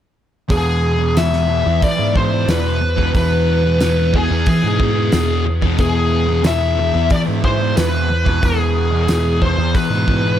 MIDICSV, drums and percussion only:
0, 0, Header, 1, 2, 480
1, 0, Start_track
1, 0, Key_signature, 4, "major"
1, 0, Tempo, 660793
1, 365, Time_signature, 4, 2, 24, 8
1, 7550, End_track
2, 0, Start_track
2, 0, Title_t, "Drums"
2, 364, Note_on_c, 9, 36, 97
2, 364, Note_on_c, 9, 46, 47
2, 436, Note_off_c, 9, 46, 0
2, 437, Note_off_c, 9, 36, 0
2, 848, Note_on_c, 9, 46, 46
2, 848, Note_on_c, 9, 54, 81
2, 851, Note_on_c, 9, 38, 87
2, 921, Note_off_c, 9, 46, 0
2, 921, Note_off_c, 9, 54, 0
2, 924, Note_off_c, 9, 38, 0
2, 966, Note_on_c, 9, 38, 30
2, 1039, Note_off_c, 9, 38, 0
2, 1324, Note_on_c, 9, 46, 47
2, 1325, Note_on_c, 9, 36, 93
2, 1397, Note_off_c, 9, 46, 0
2, 1398, Note_off_c, 9, 36, 0
2, 1566, Note_on_c, 9, 36, 85
2, 1639, Note_off_c, 9, 36, 0
2, 1805, Note_on_c, 9, 46, 48
2, 1805, Note_on_c, 9, 54, 85
2, 1808, Note_on_c, 9, 38, 93
2, 1878, Note_off_c, 9, 46, 0
2, 1878, Note_off_c, 9, 54, 0
2, 1881, Note_off_c, 9, 38, 0
2, 2165, Note_on_c, 9, 36, 69
2, 2238, Note_off_c, 9, 36, 0
2, 2285, Note_on_c, 9, 46, 45
2, 2286, Note_on_c, 9, 36, 99
2, 2357, Note_off_c, 9, 46, 0
2, 2359, Note_off_c, 9, 36, 0
2, 2764, Note_on_c, 9, 46, 47
2, 2767, Note_on_c, 9, 38, 99
2, 2769, Note_on_c, 9, 54, 83
2, 2836, Note_off_c, 9, 46, 0
2, 2839, Note_off_c, 9, 38, 0
2, 2841, Note_off_c, 9, 54, 0
2, 3005, Note_on_c, 9, 36, 80
2, 3078, Note_off_c, 9, 36, 0
2, 3242, Note_on_c, 9, 46, 46
2, 3245, Note_on_c, 9, 36, 104
2, 3314, Note_off_c, 9, 46, 0
2, 3318, Note_off_c, 9, 36, 0
2, 3484, Note_on_c, 9, 36, 83
2, 3557, Note_off_c, 9, 36, 0
2, 3720, Note_on_c, 9, 46, 43
2, 3723, Note_on_c, 9, 38, 100
2, 3727, Note_on_c, 9, 54, 82
2, 3793, Note_off_c, 9, 46, 0
2, 3796, Note_off_c, 9, 38, 0
2, 3799, Note_off_c, 9, 54, 0
2, 4084, Note_on_c, 9, 36, 67
2, 4157, Note_off_c, 9, 36, 0
2, 4202, Note_on_c, 9, 46, 45
2, 4204, Note_on_c, 9, 36, 95
2, 4275, Note_off_c, 9, 46, 0
2, 4277, Note_off_c, 9, 36, 0
2, 4680, Note_on_c, 9, 46, 46
2, 4681, Note_on_c, 9, 54, 77
2, 4683, Note_on_c, 9, 38, 91
2, 4752, Note_off_c, 9, 46, 0
2, 4754, Note_off_c, 9, 54, 0
2, 4755, Note_off_c, 9, 38, 0
2, 5159, Note_on_c, 9, 46, 45
2, 5163, Note_on_c, 9, 36, 98
2, 5232, Note_off_c, 9, 46, 0
2, 5235, Note_off_c, 9, 36, 0
2, 5403, Note_on_c, 9, 36, 81
2, 5476, Note_off_c, 9, 36, 0
2, 5645, Note_on_c, 9, 46, 50
2, 5645, Note_on_c, 9, 54, 89
2, 5648, Note_on_c, 9, 38, 92
2, 5717, Note_off_c, 9, 46, 0
2, 5717, Note_off_c, 9, 54, 0
2, 5720, Note_off_c, 9, 38, 0
2, 6002, Note_on_c, 9, 36, 70
2, 6075, Note_off_c, 9, 36, 0
2, 6123, Note_on_c, 9, 36, 94
2, 6123, Note_on_c, 9, 46, 44
2, 6195, Note_off_c, 9, 36, 0
2, 6195, Note_off_c, 9, 46, 0
2, 6598, Note_on_c, 9, 54, 84
2, 6601, Note_on_c, 9, 46, 44
2, 6604, Note_on_c, 9, 38, 103
2, 6670, Note_off_c, 9, 54, 0
2, 6674, Note_off_c, 9, 46, 0
2, 6677, Note_off_c, 9, 38, 0
2, 6841, Note_on_c, 9, 36, 78
2, 6914, Note_off_c, 9, 36, 0
2, 7081, Note_on_c, 9, 36, 100
2, 7083, Note_on_c, 9, 46, 46
2, 7153, Note_off_c, 9, 36, 0
2, 7156, Note_off_c, 9, 46, 0
2, 7321, Note_on_c, 9, 36, 81
2, 7393, Note_off_c, 9, 36, 0
2, 7550, End_track
0, 0, End_of_file